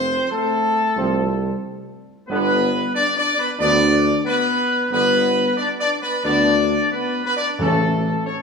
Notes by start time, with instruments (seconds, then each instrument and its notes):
Already playing: tuba F1, french horn section C4, trumpet section C5
0.31 french horn section A3, trumpet section A4
0.97 tuba C2, trombone section F3 C4
2.28 tuba G1, trombone section D3 B3, french horn section B3, trumpet section B4
2.94 french horn section D4, trumpet section D5
3.16 french horn section D4, trumpet section D5
3.38 french horn section B3, trumpet section B4
3.59 tuba D2, trombone section D3 B3, french horn section D4, trumpet section D5
4.24 french horn section B3, trumpet section B4
4.91 tuba G1, trombone section D3 B3, french horn section B3, trumpet section B4
5.57 french horn section D4, trumpet section D5
5.80 french horn section D4, trumpet section D5
6.02 french horn section B3, trumpet section B4
6.24 tuba D2, trombone section D3 B3, french horn section D4, trumpet section D5
6.91 french horn section B3, trumpet section B4
7.25 french horn section B3, trumpet section B4
7.36 french horn section D4, trumpet section D5
7.59 tuba A1, timpani A2, trombone section C#3 C#4, french horn section A3, trumpet section A4
8.26 french horn section C#4, trumpet section C#5